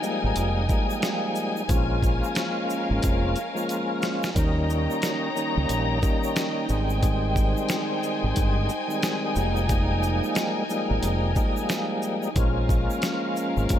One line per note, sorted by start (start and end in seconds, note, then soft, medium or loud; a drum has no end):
0.00 0.65 F3 loud
0.00 0.65 G3 medium
0.00 0.66 G#3 medium
0.00 0.66 A#3 medium
0.00 1.66 D#4 medium
0.00 1.67 A#4 medium
0.00 1.65 G5 medium
0.00 4.32 G#5 loud
0.00 shaker medium
0.04 0.66 D#4 loud
0.24 0.35 G#1 medium
0.36 0.67 F1 loud
0.36 closed hi-hat loud
0.36 shaker medium
0.68 1.63 F3 medium
0.68 1.63 G3 medium
0.68 1.63 G#3 medium
0.68 1.64 A#3 medium
0.68 1.64 D#4 loud
0.68 kick loud
0.68 shaker soft
0.90 shaker soft
1.02 snare loud
1.02 closed hi-hat medium
1.02 shaker medium
1.35 shaker medium
1.35 shaker soft
1.57 shaker soft
1.68 2.20 A#1 loud
1.68 3.38 F3 medium
1.68 3.38 G#3 medium
1.68 3.39 A#3 medium
1.68 3.39 C#4 medium
1.68 4.34 C#4 medium
1.68 3.39 F4 loud
1.68 4.34 A#4 medium
1.68 4.34 F5 medium
1.68 kick loud
1.68 closed hi-hat medium
1.68 shaker medium
2.03 kick medium
2.03 shaker soft
2.03 shaker medium
2.24 shaker soft
2.35 snare loud
2.35 closed hi-hat medium
2.35 shaker medium
2.70 shaker medium
2.70 shaker soft
2.91 3.02 G#1 loud
3.03 3.34 F1 medium
3.03 kick loud
3.03 closed hi-hat loud
3.03 shaker medium
3.36 closed hi-hat soft
3.36 shaker soft
3.54 4.30 F3 loud
3.54 4.30 G#3 medium
3.54 4.30 A#3 medium
3.54 4.31 C#4 medium
3.54 4.31 F4 loud
3.54 shaker soft
3.69 closed hi-hat medium
3.69 shaker medium
4.02 snare loud
4.02 shaker medium
4.23 snare medium
4.23 shaker soft
4.34 4.87 D#2 loud
4.34 5.30 D#3 medium
4.34 5.30 G3 medium
4.34 5.30 A#3 medium
4.34 5.30 C#4 medium
4.34 6.66 D#4 medium
4.34 5.31 D#4 loud
4.34 6.66 C#5 medium
4.34 12.31 G5 medium
4.34 6.66 A#5 loud
4.34 kick loud
4.34 closed hi-hat medium
4.34 shaker medium
4.70 shaker medium
4.70 shaker soft
4.91 shaker soft
5.02 snare loud
5.02 closed hi-hat medium
5.02 shaker medium
5.35 5.98 D#3 loud
5.35 5.99 G3 medium
5.35 5.99 A#3 medium
5.35 5.99 C#4 medium
5.35 5.99 D#4 loud
5.35 shaker medium
5.57 5.69 C#2 loud
5.69 6.00 A#1 loud
5.69 closed hi-hat loud
5.69 shaker medium
6.02 6.67 D#3 medium
6.02 6.68 G3 medium
6.02 6.69 A#3 medium
6.02 6.70 C#4 medium
6.02 6.69 D#4 loud
6.02 kick loud
6.02 shaker soft
6.24 shaker medium
6.36 snare loud
6.36 closed hi-hat medium
6.36 shaker medium
6.68 7.53 G#1 loud
6.68 6.99 D#3 medium
6.68 7.00 G3 medium
6.68 7.00 G#3 medium
6.68 7.01 C4 medium
6.68 12.32 D#4 medium
6.68 7.01 D#4 loud
6.68 9.34 C5 medium
6.68 13.79 G#5 loud
6.68 shaker medium
6.68 shaker soft
6.90 shaker soft
7.01 8.71 D#3 loud
7.01 8.71 G3 medium
7.01 8.71 G#3 medium
7.01 8.72 C4 medium
7.01 8.72 D#4 loud
7.01 kick loud
7.01 closed hi-hat medium
7.01 shaker medium
7.36 kick medium
7.36 shaker soft
7.36 shaker medium
7.57 shaker soft
7.69 snare loud
7.69 closed hi-hat medium
7.69 shaker medium
8.03 shaker soft
8.03 shaker medium
8.24 8.35 G#1 loud
8.36 8.67 G1 loud
8.36 kick loud
8.36 closed hi-hat loud
8.36 shaker medium
8.69 shaker soft
8.87 9.35 D#3 medium
8.87 9.34 G3 medium
8.87 9.34 G#3 medium
8.87 9.35 C4 medium
8.87 9.36 D#4 loud
8.87 shaker soft
9.03 snare loud
9.03 closed hi-hat medium
9.03 shaker medium
9.35 10.20 F1 loud
9.35 9.67 F3 loud
9.35 9.67 G3 medium
9.35 9.67 G#3 medium
9.35 9.68 A#3 medium
9.35 9.68 D#4 loud
9.35 12.33 A#4 medium
9.35 shaker medium
9.35 shaker soft
9.56 shaker soft
9.68 10.63 F3 medium
9.68 10.63 G3 medium
9.68 10.63 G#3 medium
9.68 10.64 A#3 medium
9.68 10.64 D#4 loud
9.68 kick loud
9.68 closed hi-hat medium
9.68 shaker medium
10.03 shaker medium
10.03 shaker soft
10.24 shaker soft
10.35 snare loud
10.35 closed hi-hat medium
10.35 shaker medium
10.69 11.32 F3 loud
10.69 11.32 G3 medium
10.69 11.32 G#3 medium
10.69 11.33 A#3 medium
10.69 11.33 D#4 loud
10.69 shaker soft
10.69 shaker medium
10.91 11.02 G#1 medium
11.03 11.34 F1 loud
11.03 closed hi-hat loud
11.03 shaker medium
11.34 12.29 F3 medium
11.34 12.30 G3 medium
11.34 12.30 G#3 medium
11.34 12.30 A#3 medium
11.34 12.30 D#4 loud
11.34 kick loud
11.34 shaker soft
11.34 shaker medium
11.57 shaker soft
11.69 snare loud
11.69 closed hi-hat medium
11.69 shaker medium
12.02 shaker medium
12.02 shaker soft
12.23 shaker soft
12.35 12.86 A#1 loud
12.35 13.79 F3 medium
12.35 13.79 G#3 medium
12.35 13.79 A#3 medium
12.35 13.79 C#4 medium
12.35 13.79 F4 loud
12.35 13.79 A#4 medium
12.35 13.79 F5 medium
12.35 kick loud
12.35 closed hi-hat medium
12.35 shaker medium
12.69 kick medium
12.69 shaker soft
12.69 shaker medium
12.90 shaker soft
13.02 snare loud
13.02 closed hi-hat medium
13.02 shaker medium
13.36 shaker soft
13.36 shaker medium
13.57 13.69 G#1 loud
13.57 shaker soft
13.69 13.79 F1 medium
13.69 kick loud
13.69 closed hi-hat loud
13.69 shaker medium